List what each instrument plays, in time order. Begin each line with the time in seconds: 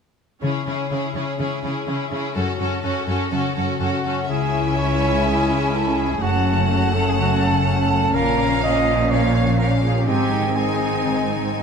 0.42 harp C#3, cello section C#3, viola section C#4, violin section E4 G#4
0.58 harp C#4
0.67 cello section C#3, viola section C#4, violin section E4 G#4
0.74 harp G#4
0.90 cello section C#3, viola section C#4, violin section E4 G#4, harp E5
1.07 harp G#4
1.15 cello section C#3, viola section C#4, violin section E4 G#4
1.23 harp E4
1.39 cello section C#3, harp G#3, viola section C#4, violin section E4 G#4
1.56 harp C#4
1.63 cello section C#3, viola section C#4, violin section E4 G#4
1.72 harp G#4
1.87 cello section C#3, viola section C#4, violin section E4 G#4, harp E5
2.03 harp G#4
2.12 cello section C#3, viola section C#4, violin section E4 G#4
2.20 harp E4
2.35 harp F#2, cello section F#2, viola section C#4, violin section F#4 A4
2.52 harp C#4
2.59 cello section F#2, viola section C#4, violin section F#4 A4
2.68 harp A4
2.83 cello section F#2, viola section C#4, violin section F#4 A4, harp F#5
3.00 harp A4
3.07 cello section F#2, viola section C#4, violin section F#4 A4
3.16 harp F#4
3.31 cello section F#2, harp C#3, viola section C#4, violin section F#4 A4
3.49 harp C#4
3.56 cello section F#2, viola section C#4, violin section F#4 A4
3.64 harp A4
3.80 cello section F#2, viola section C#4, trumpet section F#4, violin section F#4 A4, harp F#5
3.97 harp A4
4.03 cello section F#2, viola section C#4, violin section F#4 A4
4.12 harp F#4
4.29 cello section C#2, double bass section C#2, harp C#3, french horn section G#3 E4, viola section C#4, clarinet E4, violin section E4 E5, trumpet section G#4, flute G#5
4.45 harp E4
4.61 harp G#3
4.77 harp C#4, trumpet section C#5
4.93 harp G#4
5.25 harp G#3, trumpet section G#4
5.41 harp E4
5.58 harp G#3
5.73 harp C#4, trumpet section A4
5.90 harp G#4
5.97 trumpet section G#4
6.05 harp E4
6.21 double bass section F#1, harp F#2, cello section F#2, viola section A3, french horn section A3 C#4, clarinet C#4, violin section C#4 F#5, trumpet section F#4, flute A5
6.38 harp F#4
6.53 harp C#3
6.70 harp C#4, trumpet section F#4
6.86 harp A4
6.94 trumpet section A4
7.02 harp F#4
7.07 trumpet section G#4
7.18 harp C#3, trumpet section F#4
7.35 harp F#4
7.43 trumpet section A4
7.50 harp C#3
7.66 harp C#4, trumpet section A4
7.82 harp A4
7.98 harp F#4
8.14 double bass section A#1, harp A#2, cello section A#2, french horn section F3, viola section A#3, violin section C#4 F5, trumpet section A#4, flute F5
8.31 harp F4
8.47 harp F3
8.63 harp C#4, trumpet section D#5
8.79 harp A#4
8.94 harp F4
9.10 harp F3, viola section A#3, violin section C#4 F5, trumpet section C#5
9.27 harp F4
9.43 harp F3
9.58 viola section A#3, harp C#4, violin section C#4 F5, trumpet section A#4
9.75 harp A#4
9.83 trumpet section G#4
9.91 harp F4, trumpet section G4
10.06 double bass section G#1, harp G#2, cello section G#2, french horn section D#3 C4, viola section C4, clarinet C4, violin section D#4 G#5, trumpet section G4, flute D#5
10.23 harp G#4
10.40 harp D#3
10.55 viola section C4, harp D#4, violin section D#4 G#5, trumpet section G#4
10.73 harp C5
10.89 harp G#4
11.05 harp D#3
11.21 harp G#4
11.37 harp D#3
11.54 harp D#4